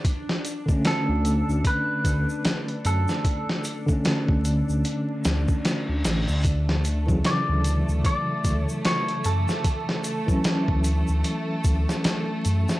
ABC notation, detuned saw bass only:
X:1
M:4/4
L:1/16
Q:"Swing 16ths" 1/4=75
K:Bm
V:1 name="Detuned saw bass" clef=bass
z4 z D,,2 D,, z2 D,, z3 F,, z | z4 z D,,2 D,, z2 D,, z2 D,, A,,, D,,- | D,,4 z D,,2 D,, z2 D,, z3 F,, z | z4 z D,,2 D,, z2 D,, z3 F,, z |]